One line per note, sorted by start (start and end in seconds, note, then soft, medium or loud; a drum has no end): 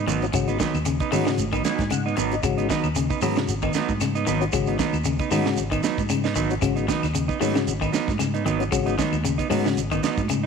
0.07 0.32 G#1 medium
0.07 0.25 D#3 medium
0.07 0.24 F#3 medium
0.07 0.24 B3 medium
0.07 0.25 D#4 medium
0.07 closed hi-hat medium
0.07 high conga medium
0.07 low conga medium
0.07 shekere medium
0.22 0.26 C#4 loud
0.22 0.26 F#4 loud
0.22 closed hi-hat soft
0.22 shekere soft
0.33 0.58 G#1 medium
0.33 0.51 C#3 medium
0.33 0.58 G#3 medium
0.33 0.58 C#4 medium
0.33 0.58 F#4 loud
0.33 kick medium
0.33 closed hi-hat medium
0.33 claves medium
0.33 shekere medium
0.48 0.59 B3 soft
0.48 0.60 D#4 medium
0.48 closed hi-hat soft
0.48 shekere soft
0.60 0.77 D#3 medium
0.60 0.77 F#3 medium
0.60 0.77 B3 medium
0.60 0.77 D#4 medium
0.60 kick medium
0.60 snare medium
0.60 closed hi-hat soft
0.60 high conga medium
0.60 shekere medium
0.74 0.99 D#2 medium
0.74 claves medium
0.74 shekere soft
0.85 1.03 C#3 medium
0.85 closed hi-hat medium
0.85 shekere medium
1.00 1.12 B3 soft
1.00 1.12 D#4 medium
1.00 kick medium
1.00 closed hi-hat soft
1.00 shekere soft
1.12 1.37 G#2 medium
1.12 1.22 D#3 medium
1.12 1.29 F#3 medium
1.12 1.44 G#3 medium
1.12 1.29 B3 medium
1.12 1.45 C#4 medium
1.12 1.30 D#4 medium
1.12 1.45 F#4 medium
1.12 open hi-hat medium
1.12 high conga medium
1.12 low conga medium
1.12 claves medium
1.12 shekere medium
1.27 1.44 C#3 medium
1.27 snare medium
1.27 shekere soft
1.38 1.62 G#1 medium
1.38 closed hi-hat medium
1.38 high conga medium
1.38 shekere medium
1.52 1.70 D#3 medium
1.52 1.64 B3 soft
1.52 1.65 D#4 medium
1.52 kick medium
1.52 closed hi-hat soft
1.52 claves medium
1.52 shekere soft
1.64 1.82 F#3 medium
1.64 1.82 B3 medium
1.64 1.82 D#4 medium
1.64 1.89 G#5 medium
1.64 snare medium
1.64 closed hi-hat soft
1.64 high conga medium
1.64 shekere medium
1.78 2.14 G#2 medium
1.78 kick medium
1.78 snare soft
1.78 closed hi-hat soft
1.78 high conga medium
1.78 shekere soft
1.90 2.08 C#3 medium
1.90 2.15 F#5 medium
1.90 closed hi-hat medium
1.90 claves medium
1.90 shekere medium
2.06 2.17 B3 soft
2.06 2.17 D#4 medium
2.06 shekere soft
2.17 2.41 G#1 medium
2.17 2.34 D#3 medium
2.17 2.34 F#3 medium
2.17 2.34 B3 medium
2.17 2.34 D#4 medium
2.17 2.42 D#5 medium
2.17 closed hi-hat soft
2.17 low conga medium
2.17 shekere medium
2.31 2.35 C#4 medium
2.31 2.36 F#4 loud
2.31 closed hi-hat soft
2.31 shekere soft
2.43 2.67 G#1 medium
2.43 2.61 C#3 medium
2.43 2.68 G#3 medium
2.43 2.68 C#4 medium
2.43 2.68 F#4 loud
2.43 kick medium
2.43 closed hi-hat medium
2.43 claves medium
2.43 shekere medium
2.58 2.69 B3 soft
2.58 2.69 D#4 medium
2.58 closed hi-hat soft
2.58 shekere soft
2.70 2.87 D#3 medium
2.70 2.86 F#3 medium
2.70 2.87 B3 medium
2.70 2.87 D#4 medium
2.70 kick medium
2.70 snare medium
2.70 closed hi-hat soft
2.70 high conga medium
2.70 shekere medium
2.84 3.08 D#2 medium
2.84 claves medium
2.84 shekere soft
2.96 3.13 C#3 medium
2.96 closed hi-hat medium
2.96 shekere loud
3.10 3.21 B3 soft
3.10 3.22 D#4 medium
3.10 kick medium
3.10 shekere soft
3.22 3.46 G#2 medium
3.22 3.39 F#3 medium
3.22 3.54 G#3 medium
3.22 3.39 B3 medium
3.22 3.54 C#4 medium
3.22 3.55 F#4 medium
3.22 muted clean electric guitar stroke medium
3.22 open hi-hat medium
3.22 high conga medium
3.22 low conga medium
3.22 claves medium
3.22 shekere medium
3.36 3.54 C#3 medium
3.36 snare medium
3.36 closed hi-hat soft
3.36 shekere soft
3.48 3.72 G#1 medium
3.48 closed hi-hat medium
3.48 shekere medium
3.62 3.80 D#3 medium
3.62 3.74 B3 soft
3.62 3.74 D#4 medium
3.62 kick medium
3.62 claves medium
3.62 shekere soft
3.73 3.91 F#3 medium
3.73 3.91 B3 medium
3.73 3.92 D#4 medium
3.73 muted fingered electric bass stroke soft
3.73 snare medium
3.73 closed hi-hat soft
3.73 high conga medium
3.73 shekere medium
3.89 4.24 G#2 medium
3.89 kick medium
3.89 high conga medium
3.89 shekere soft
4.01 4.18 C#3 medium
4.01 snare soft
4.01 closed hi-hat medium
4.01 claves medium
4.01 shekere medium
4.15 4.26 B3 soft
4.15 4.27 D#4 medium
4.15 closed hi-hat soft
4.15 shekere soft
4.27 4.51 G#1 medium
4.27 4.44 D#3 medium
4.27 4.44 F#3 medium
4.27 4.44 B3 medium
4.27 4.44 D#4 medium
4.27 closed hi-hat soft
4.27 low conga medium
4.27 shekere medium
4.40 4.44 C#4 medium
4.40 4.45 F#4 loud
4.40 closed hi-hat soft
4.40 shekere soft
4.52 4.77 G#1 medium
4.52 4.71 C#3 medium
4.52 4.77 G#3 medium
4.52 4.77 C#4 medium
4.52 4.78 F#4 loud
4.52 kick medium
4.52 closed hi-hat medium
4.52 claves medium
4.52 shekere medium
4.66 4.78 B3 soft
4.66 4.79 D#4 medium
4.66 closed hi-hat soft
4.66 shekere soft
4.79 4.97 D#3 medium
4.79 4.96 F#3 medium
4.79 4.96 B3 medium
4.79 4.96 D#4 medium
4.79 kick medium
4.79 snare medium
4.79 closed hi-hat soft
4.79 high conga medium
4.79 shekere medium
4.93 5.17 D#2 medium
4.93 high conga medium
4.93 claves medium
4.93 shekere soft
5.05 5.23 C#3 medium
5.05 closed hi-hat medium
5.05 shekere medium
5.19 5.31 B3 soft
5.19 5.31 D#4 medium
5.19 kick medium
5.19 closed hi-hat soft
5.19 shekere soft
5.31 5.56 G#2 medium
5.31 5.41 D#3 medium
5.31 5.48 F#3 medium
5.31 5.63 G#3 medium
5.31 5.49 B3 medium
5.31 5.64 C#4 medium
5.31 5.49 D#4 medium
5.31 5.64 F#4 medium
5.31 open hi-hat medium
5.31 high conga medium
5.31 low conga medium
5.31 claves medium
5.31 shekere medium
5.45 5.63 C#3 medium
5.45 snare medium
5.45 shekere soft
5.57 5.82 G#1 medium
5.57 closed hi-hat medium
5.57 shekere medium
5.71 5.89 D#3 medium
5.71 5.83 B3 soft
5.71 5.83 D#4 medium
5.71 kick medium
5.71 closed hi-hat soft
5.71 claves medium
5.71 shekere soft
5.83 6.00 F#3 medium
5.83 6.01 B3 medium
5.83 6.01 D#4 medium
5.83 snare medium
5.83 closed hi-hat soft
5.83 high conga medium
5.83 shekere medium
5.98 6.33 G#2 medium
5.98 kick medium
5.98 closed hi-hat soft
5.98 high conga medium
5.98 shekere soft
6.09 6.27 C#3 medium
6.09 closed hi-hat medium
6.09 claves medium
6.09 shekere medium
6.24 6.35 B3 soft
6.24 6.35 D#4 medium
6.24 snare medium
6.24 shekere soft
6.35 6.61 G#1 medium
6.35 6.53 D#3 medium
6.35 6.53 F#3 medium
6.35 6.53 B3 medium
6.35 6.53 D#4 medium
6.35 kick medium
6.35 closed hi-hat soft
6.35 low conga medium
6.35 shekere medium
6.50 6.54 C#4 medium
6.50 6.55 F#4 loud
6.50 closed hi-hat soft
6.50 shekere soft
6.62 6.86 G#1 medium
6.62 6.80 C#3 medium
6.62 6.86 G#3 medium
6.62 6.86 C#4 medium
6.62 6.87 F#4 medium
6.62 kick medium
6.62 closed hi-hat medium
6.62 claves medium
6.62 shekere medium
6.76 6.87 B3 soft
6.76 6.88 D#4 soft
6.76 closed hi-hat soft
6.76 shekere soft
6.88 7.06 D#3 medium
6.88 7.05 F#3 medium
6.88 7.05 B3 medium
6.88 7.06 D#4 medium
6.88 kick medium
6.88 snare medium
6.88 closed hi-hat soft
6.88 high conga medium
6.88 shekere medium
7.03 7.27 D#2 medium
7.03 snare soft
7.03 claves medium
7.03 shekere soft
7.15 7.32 C#3 medium
7.15 closed hi-hat medium
7.15 shekere medium
7.28 7.40 B3 soft
7.28 7.40 D#4 medium
7.28 kick medium
7.28 shekere soft
7.40 7.65 G#2 medium
7.40 7.50 D#3 medium
7.40 7.58 F#3 medium
7.40 7.73 G#3 medium
7.40 7.58 B3 medium
7.40 7.73 C#4 medium
7.40 7.58 D#4 medium
7.40 7.74 F#4 medium
7.40 open hi-hat medium
7.40 high conga medium
7.40 low conga medium
7.40 claves medium
7.40 shekere medium
7.55 7.73 C#3 medium
7.55 snare medium
7.55 closed hi-hat soft
7.55 shekere soft
7.67 7.92 G#1 medium
7.67 closed hi-hat medium
7.67 high conga medium
7.67 shekere medium
7.81 7.99 D#3 medium
7.81 7.92 B3 soft
7.81 7.93 D#4 medium
7.81 kick medium
7.81 claves medium
7.81 shekere soft
7.92 8.10 F#3 medium
7.92 8.10 B3 medium
7.92 8.11 D#4 medium
7.92 snare medium
7.92 closed hi-hat soft
7.92 high conga medium
7.92 shekere medium
8.07 8.43 G#2 medium
8.07 kick medium
8.07 snare soft
8.07 high conga medium
8.07 shekere soft
8.19 8.37 C#3 medium
8.19 snare soft
8.19 closed hi-hat medium
8.19 claves medium
8.19 shekere medium
8.34 8.45 B3 soft
8.34 8.45 D#4 medium
8.34 closed hi-hat soft
8.34 shekere soft
8.45 8.70 G#1 medium
8.45 8.63 D#3 medium
8.45 8.62 F#3 medium
8.45 8.63 B3 medium
8.45 8.63 D#4 medium
8.45 closed hi-hat soft
8.45 low conga medium
8.45 shekere medium
8.60 8.64 C#4 medium
8.60 8.64 F#4 loud
8.60 closed hi-hat soft
8.60 shekere soft
8.72 8.97 G#1 medium
8.72 8.90 C#3 medium
8.72 8.96 G#3 medium
8.72 8.96 C#4 medium
8.72 8.97 F#4 loud
8.72 kick medium
8.72 closed hi-hat medium
8.72 claves medium
8.72 shekere medium
8.86 8.97 B3 soft
8.86 8.97 D#4 medium
8.86 closed hi-hat soft
8.86 shekere soft
8.98 9.16 D#3 medium
8.98 9.15 F#3 medium
8.98 9.15 B3 medium
8.98 9.15 D#4 medium
8.98 kick medium
8.98 snare medium
8.98 closed hi-hat soft
8.98 high conga medium
8.98 shekere medium
9.13 9.37 D#2 medium
9.13 high conga medium
9.13 claves medium
9.13 shekere soft
9.25 9.42 C#3 medium
9.25 closed hi-hat medium
9.25 shekere medium
9.38 9.49 B3 soft
9.38 9.50 D#4 medium
9.38 kick medium
9.38 closed hi-hat soft
9.38 shekere soft
9.50 9.75 G#2 medium
9.50 9.60 D#3 medium
9.50 9.67 F#3 medium
9.50 9.82 G#3 medium
9.50 9.67 B3 medium
9.50 9.83 C#4 medium
9.50 9.68 D#4 medium
9.50 9.83 F#4 medium
9.50 open hi-hat medium
9.50 high conga medium
9.50 low conga medium
9.50 claves medium
9.50 shekere medium
9.65 9.83 C#3 medium
9.65 snare medium
9.65 shekere soft
9.76 10.01 G#1 medium
9.76 closed hi-hat medium
9.76 shekere medium
9.91 10.09 D#3 medium
9.91 10.03 B3 soft
9.91 10.03 D#4 medium
9.91 kick medium
9.91 closed hi-hat soft
9.91 claves medium
9.91 shekere soft
10.03 10.20 F#3 medium
10.03 10.20 B3 medium
10.03 10.21 D#4 medium
10.03 muted fingered electric bass stroke soft
10.03 snare medium
10.03 closed hi-hat soft
10.03 high conga medium
10.03 shekere medium
10.17 10.46 G#2 medium
10.17 kick medium
10.17 closed hi-hat soft
10.17 high conga medium
10.17 shekere soft
10.29 10.46 C#3 medium
10.29 closed hi-hat medium
10.29 claves medium
10.29 shekere medium